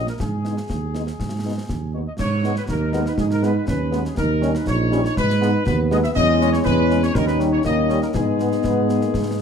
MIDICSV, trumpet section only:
0, 0, Header, 1, 2, 480
1, 0, Start_track
1, 0, Key_signature, 5, "minor"
1, 0, Tempo, 497100
1, 189, Time_signature, 2, 2, 24, 8
1, 9093, End_track
2, 0, Start_track
2, 0, Title_t, "Trumpet section"
2, 0, Program_c, 0, 61
2, 83, Note_on_c, 0, 70, 60
2, 134, Note_off_c, 0, 70, 0
2, 195, Note_on_c, 0, 68, 62
2, 1833, Note_off_c, 0, 68, 0
2, 1871, Note_on_c, 0, 73, 47
2, 1924, Note_off_c, 0, 73, 0
2, 1997, Note_on_c, 0, 75, 56
2, 2049, Note_off_c, 0, 75, 0
2, 2112, Note_on_c, 0, 73, 88
2, 2445, Note_off_c, 0, 73, 0
2, 2482, Note_on_c, 0, 71, 76
2, 2533, Note_off_c, 0, 71, 0
2, 2601, Note_on_c, 0, 70, 75
2, 2930, Note_off_c, 0, 70, 0
2, 2969, Note_on_c, 0, 71, 71
2, 3018, Note_off_c, 0, 71, 0
2, 3079, Note_on_c, 0, 68, 86
2, 3130, Note_off_c, 0, 68, 0
2, 3203, Note_on_c, 0, 70, 75
2, 3307, Note_off_c, 0, 70, 0
2, 3317, Note_on_c, 0, 71, 80
2, 3539, Note_off_c, 0, 71, 0
2, 3550, Note_on_c, 0, 71, 74
2, 3884, Note_off_c, 0, 71, 0
2, 3921, Note_on_c, 0, 68, 69
2, 4034, Note_off_c, 0, 68, 0
2, 4034, Note_on_c, 0, 70, 94
2, 4366, Note_off_c, 0, 70, 0
2, 4407, Note_on_c, 0, 71, 74
2, 4517, Note_off_c, 0, 71, 0
2, 4519, Note_on_c, 0, 73, 91
2, 4848, Note_off_c, 0, 73, 0
2, 4873, Note_on_c, 0, 73, 89
2, 4982, Note_off_c, 0, 73, 0
2, 4989, Note_on_c, 0, 71, 104
2, 5435, Note_off_c, 0, 71, 0
2, 5472, Note_on_c, 0, 71, 94
2, 5579, Note_off_c, 0, 71, 0
2, 5710, Note_on_c, 0, 75, 88
2, 5763, Note_off_c, 0, 75, 0
2, 5826, Note_on_c, 0, 76, 100
2, 5880, Note_off_c, 0, 76, 0
2, 5939, Note_on_c, 0, 75, 111
2, 6278, Note_off_c, 0, 75, 0
2, 6302, Note_on_c, 0, 73, 91
2, 6357, Note_off_c, 0, 73, 0
2, 6418, Note_on_c, 0, 71, 105
2, 6757, Note_off_c, 0, 71, 0
2, 6787, Note_on_c, 0, 73, 94
2, 6899, Note_off_c, 0, 73, 0
2, 6902, Note_on_c, 0, 70, 105
2, 7022, Note_on_c, 0, 71, 90
2, 7025, Note_off_c, 0, 70, 0
2, 7131, Note_off_c, 0, 71, 0
2, 7269, Note_on_c, 0, 73, 91
2, 7322, Note_off_c, 0, 73, 0
2, 7381, Note_on_c, 0, 75, 94
2, 7719, Note_off_c, 0, 75, 0
2, 7744, Note_on_c, 0, 70, 67
2, 7799, Note_off_c, 0, 70, 0
2, 7853, Note_on_c, 0, 68, 81
2, 9093, Note_off_c, 0, 68, 0
2, 9093, End_track
0, 0, End_of_file